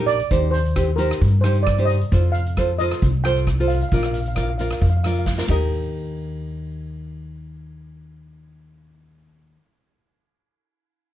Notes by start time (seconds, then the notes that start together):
Already playing: A#1 D#4 G4
0.00 A#4
0.06 D5, closed hi-hat
0.20 closed hi-hat
0.31 D#2 D#4 G4 C5, kick, closed hi-hat
0.51 C5, closed hi-hat
0.65 closed hi-hat
0.76 D#4 G4 C5, kick, cross-stick, closed hi-hat
0.96 D#4 G4 A#4 C5, closed hi-hat
1.11 cross-stick, closed hi-hat
1.21 G2, kick, closed hi-hat
1.41 D#4 G4 C5, cross-stick, closed hi-hat
1.55 closed hi-hat
1.63 D5
1.67 kick, cross-stick, closed hi-hat
1.78 D#4 G4 C5
1.85 D#5
1.90 closed hi-hat
2.01 closed hi-hat
2.12 F2 F4 A4 C5, kick, closed hi-hat
2.32 F5, closed hi-hat
2.46 closed hi-hat
2.57 F4 A4 C5, kick, cross-stick, closed hi-hat
2.79 F4 A4 C5 D#5, closed hi-hat
2.91 cross-stick, closed hi-hat
3.02 C2, kick, closed hi-hat
3.24 F4 A4 C5 G5, cross-stick, closed hi-hat
3.36 closed hi-hat
3.47 kick, cross-stick, closed hi-hat
3.60 F4 A4 C5
3.68 F5, closed hi-hat
3.75 F5
3.81 F5, closed hi-hat
3.89 A#1 F4 F5, kick, closed hi-hat
3.93 A#4 D5
3.98 F5
4.03 F5, cross-stick
4.13 F5, closed hi-hat
4.21 F5
4.26 F5, closed hi-hat
4.35 F4 A#4 D5 F5, kick, cross-stick, closed hi-hat
4.43 F5
4.50 F5
4.58 F4 A#4 D5 F5, closed hi-hat
4.65 F5
4.71 F5, cross-stick, closed hi-hat
4.81 F2 F5, kick, closed hi-hat
4.90 F5
4.97 F5
5.03 F4 A#4 D5 F5, cross-stick, closed hi-hat
5.12 F5, closed hi-hat
5.19 F5
5.26 F5, kick, snare
5.38 F4 A#4 D5, snare
5.47 D#2 D#4 G4 A#4 D#5, kick, ride